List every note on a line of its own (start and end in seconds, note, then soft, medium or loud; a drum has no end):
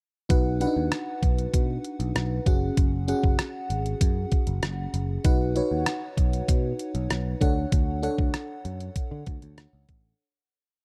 0.29 0.65 B1 loud
0.29 0.54 D#4 medium
0.29 0.54 F#4 medium
0.29 0.54 B4 medium
0.29 0.54 F#5 medium
0.29 kick loud
0.29 closed hi-hat medium
0.60 0.67 D4 medium
0.60 1.58 F#4 medium
0.60 1.58 B4 medium
0.60 1.58 F#5 medium
0.60 closed hi-hat medium
0.67 1.61 D#4 medium
0.76 0.88 D#2 medium
0.92 cross-stick loud
0.92 closed hi-hat medium
1.23 1.46 B1 medium
1.23 kick medium
1.23 closed hi-hat medium
1.39 closed hi-hat soft
1.54 1.77 B2 medium
1.54 kick medium
1.54 closed hi-hat medium
1.84 closed hi-hat medium
2.00 2.11 B1 medium
2.00 closed hi-hat soft
2.15 2.39 B1 medium
2.15 cross-stick medium
2.15 closed hi-hat medium
2.46 2.70 F#1 medium
2.46 2.96 C#4 medium
2.46 2.96 F#4 medium
2.46 2.96 G#4 medium
2.46 2.96 F#5 medium
2.46 kick medium
2.46 closed hi-hat medium
2.77 3.12 F#1 medium
2.77 kick loud
2.77 closed hi-hat medium
3.08 4.05 C#4 medium
3.08 4.05 F#4 medium
3.08 4.05 G#4 medium
3.08 4.05 F#5 medium
3.08 closed hi-hat medium
3.24 3.35 F#1 medium
3.24 kick medium
3.39 cross-stick loud
3.39 closed hi-hat medium
3.70 3.93 G#1 medium
3.70 closed hi-hat medium
3.86 closed hi-hat soft
4.01 4.24 F#2 medium
4.01 kick medium
4.01 closed hi-hat loud
4.32 kick medium
4.32 closed hi-hat medium
4.47 4.59 F#1 medium
4.47 closed hi-hat soft
4.63 4.86 F#1 medium
4.63 cross-stick medium
4.63 closed hi-hat medium
4.94 5.17 F#1 medium
4.94 closed hi-hat medium
5.24 5.60 B1 medium
5.24 5.49 D#4 medium
5.24 5.49 F#4 medium
5.24 5.49 B4 medium
5.24 5.49 F#5 medium
5.24 kick loud
5.24 closed hi-hat medium
5.55 6.52 D#4 medium
5.55 6.53 F#4 medium
5.55 6.53 B4 medium
5.55 6.53 C#5 medium
5.55 closed hi-hat medium
5.71 5.83 D#2 medium
5.86 cross-stick loud
5.86 closed hi-hat medium
6.17 6.41 B1 medium
6.17 kick medium
6.17 closed hi-hat medium
6.33 closed hi-hat soft
6.48 6.72 B2 medium
6.48 kick medium
6.48 closed hi-hat medium
6.79 closed hi-hat medium
6.95 7.06 B1 medium
6.95 closed hi-hat soft
7.10 7.34 B1 medium
7.10 cross-stick medium
7.10 closed hi-hat medium
7.41 7.64 D2 medium
7.41 7.90 D4 medium
7.41 7.91 A4 medium
7.41 7.91 C#5 medium
7.41 7.91 F#5 medium
7.41 kick medium
7.41 closed hi-hat medium
7.72 8.07 D2 medium
7.72 kick loud
7.72 closed hi-hat medium
8.03 9.00 D4 medium
8.03 9.00 A4 medium
8.03 9.00 C#5 medium
8.03 9.00 F#5 medium
8.03 closed hi-hat medium
8.18 8.30 D2 medium
8.18 kick medium
8.34 cross-stick loud
8.34 closed hi-hat medium
8.65 8.88 F#2 medium
8.65 closed hi-hat medium
8.80 closed hi-hat soft
8.96 kick medium
8.96 closed hi-hat medium
9.11 9.23 D3 medium
9.26 9.38 D2 medium
9.26 kick medium
9.26 closed hi-hat medium
9.42 9.66 D2 medium
9.42 closed hi-hat soft
9.58 cross-stick loud
9.58 closed hi-hat medium
9.73 9.85 C#2 medium
9.89 10.12 A1 medium
9.89 kick loud
9.89 closed hi-hat medium